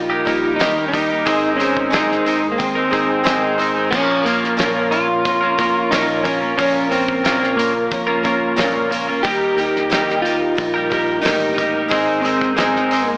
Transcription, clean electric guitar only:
0.10 A#3 D#4 G4
0.26 G3 A#3 D#4 G4
0.60 D#3 G3 A#3 D#4 G4
0.75 A#3 D#4 G4
0.92 G3 A#3 D#4 G4
1.09 A#3 D#4 G4
1.25 G#3 C4 D#4 A#4
1.58 G#3 C4 D#4 A#4
1.93 G#3 C4 D#4 A#4
2.09 C4 D#4 A#4
2.25 G#3 C4 D#4 A#4
2.43 muted clean electric guitar stroke
2.75 C4 D#4 A#4
2.91 G#3 C4 D#4 A#4
3.24 G#3 C4 D#4 A#4
3.41 C4 D#4 A#4
3.58 G#3 C4 D#4 A#4
3.75 C4 D#4 A#4
3.92 A#2 F3 A#3 C#4 F4 A#4
4.25 A#3 C#4 F4 A#4
4.57 A#2 F3 A#3 C#4 F4 A#4
4.74 A#3 C#4 F4 A#4
4.91 A#3 C#4 F4 A#4
5.08 muted clean electric guitar stroke
5.41 A#3 C#4 F4 A#4
5.58 A#3 C#4 F4 A#4
5.91 A#2 F3 A#3 C#4 F4 A#4
6.07 A#3 C#4 F4 A#4
6.24 A#3 C#4 F4 A#4
6.40 A#3 C#4 F4 A#4
6.57 A#2 F3 A#3 C#4 F4 A#4
6.90 A#3 C#4 F4 A#4
7.23 A#2 F3 A#3 C#4 F4 A#4
7.40 A#3 C#4 F4 A#4
7.56 A#3 C#4 F4 A#4
7.74 muted clean electric guitar stroke
8.07 A#3 C#4 F4 A#4
8.23 A#3 C#4 F4 A#4
8.57 A#2 F3 A#3 C#4 F4 A#4
8.73 A#3 C#4 F4 A#4
8.90 A#3 C#4 F4 A#4
9.07 A#3 C#4 F4 A#4
9.23 D#3 G3 A#3 G4 A#4
9.56 G3 A#3 G4 A#4
9.90 D#3 G3 A#3 G4 A#4
10.07 G3 G4 A#4
10.23 G3 A#3 G4 A#4
10.41 muted clean electric guitar stroke
10.74 G3 G4 A#4
10.90 G3 A#3 G4 A#4
11.24 D#3 G3 A#3 G4 A#4
11.41 G3 G4 A#4
11.57 G3 A#3 G4 A#4
11.74 G3 G4 A#4
11.91 G#3 C4 D#4 A#4
12.24 G#3 C4 D#4 A#4
12.57 G#3 C4 D#4 A#4
12.74 C4 D#4 A#4
12.91 G#3 C4 D#4 A#4
13.09 muted clean electric guitar stroke

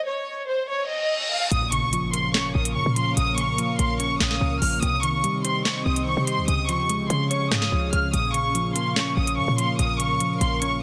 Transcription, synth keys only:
1.51 A#2
1.72 C#3
1.93 F3
2.13 A#3
2.34 C#4
2.55 A#2
2.76 C#3
2.96 F3
3.17 A#2
3.38 C#3
3.59 F3
3.79 A#3
4.00 C#4
4.20 A#2
4.41 C#3
4.62 F3
4.82 C3
5.03 D#3
5.24 G3
5.45 C4
5.65 C5
5.86 C3
6.07 D#3
6.27 G3
6.48 C#3
6.69 F3
6.89 G#3
7.10 C#4
7.31 C#5
7.51 C#3
7.72 F3
7.93 G#3
8.14 A#2
8.34 C#3
8.55 F3
8.76 A#3
8.96 C#4
9.17 A#2
9.38 C#3
9.58 F3
9.79 A#2
10.00 C#3
10.21 F3
10.41 A#3
10.62 C#4

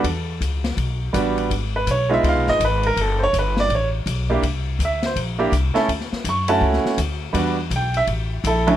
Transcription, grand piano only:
Already playing: A4
1.13 G3 B3 D4 F#4
1.76 B4
1.91 C#5
2.09 G#3 B3 D#4 F4
2.14 E5
2.29 F5
2.49 D#5
2.65 B4
2.87 A#4
3.01 A4
3.19 C5
3.23 C#5
3.39 B4
3.60 D5
3.75 C#5
4.29 A#3 D4 E4 G4
4.85 E5
5.06 C5
5.39 A#3 D4 E4 G4
5.74 A3 C#4 E4 A4
6.29 C#6
6.48 A3 C#4 E4 F#4 A5
7.33 G3 B3 D4 F#4
7.76 G5
7.97 E5
8.47 E4 A4
8.67 D2 F#3 A3 C#4 E4

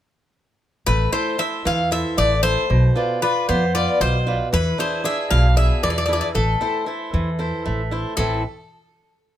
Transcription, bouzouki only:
0.86 B4
1.13 C5
1.39 E5
1.67 F5
1.92 E5
2.18 D5
2.43 C5
3.22 B4
3.49 C5
3.75 D5
4.01 C5
4.54 B4
4.80 C5
5.05 E5
5.31 F5
5.57 E5
5.83 D5
5.90 D5
5.98 D5
6.06 D5
6.13 D5
6.21 D5
6.35 A4
8.17 A4

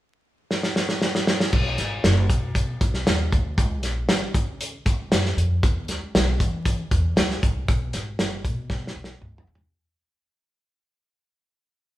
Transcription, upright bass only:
1.53 B1
1.78 G#1
2.04 F#1
2.29 B2
2.81 B1
3.06 D#2
3.32 D2
3.58 C#2
3.83 A#1
4.09 G#1
4.34 C#3
4.86 C#2
5.11 F#2
5.37 F2
5.63 E2
5.89 C#2
6.15 B1
6.40 E3
6.91 E2
7.16 C#2
7.43 C2
7.68 B1
7.94 G#1
8.19 F#1
8.44 B2
8.96 B1
9.21 C#2
9.47 C2

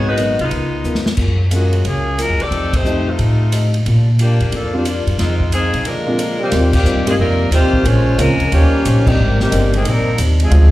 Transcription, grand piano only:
0.17 F#3 A#3 B3 D#4
1.51 G#3 A#3 C#4 F4
2.84 G3 A3 C4 D#4
4.73 G3 C4 D4 F4
6.06 A#2 G#3 C4 D4 F4
6.52 G3 A#3 C4 D#4 F4
7.06 G3 A#3 C4 D#4 G4
8.18 G#3 A#3 C4 C#4 F4
9.06 G3 A#3 C4 D4 D#4
9.50 G3 A#3 C4 D4 D#4
10.51 F3 G#3 C4 D4 F4

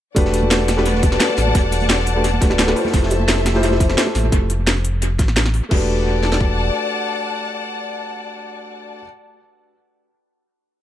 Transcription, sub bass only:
0.16 E1
1.38 A1
1.55 E1
2.42 D1
2.94 F1
4.15 A1
4.32 F1
5.19 A1
5.71 E1

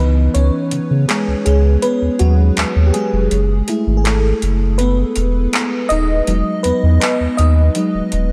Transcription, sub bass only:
Already playing: C#2
0.35 C#2
0.72 C#3
0.90 C#3
1.27 C#2
1.46 C#2
2.02 D#2
2.20 D#2
2.57 D#2
2.76 D#2
3.13 F1
3.31 F#1
3.87 G#1
4.42 F#1
5.16 E1
5.90 D#1
6.27 E1
6.64 E2
6.83 E2
7.20 D#2
7.38 D#2
7.94 D#1
8.13 D#1

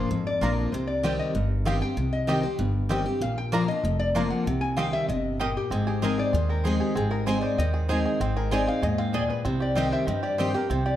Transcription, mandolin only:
0.41 A#3 F4 D5 A#5
1.03 C4 G4 D#5 G5
1.66 C4 G4 D#5 G5
2.28 C4 G4 D#5 G5
2.89 C4 G4 D#5 G5
3.52 A#3 F4 D5 A#5
4.15 A#3 F4 D5 A#5
4.77 C4 G4 D#5 G5
5.39 C4 G4 D#5 G5
6.02 C4 G#4 D#5 G#5
6.64 C4 G#4 D#5 G#5
7.26 C4 G#4 D#5 G#5
7.89 C4 G#4 D#5 G#5
8.51 C4 G#4 D#5 G#5
9.13 C4 G#4 D#5 G#5
9.75 C4 G4 D#5 G5
10.38 C4 G4 D#5 G5

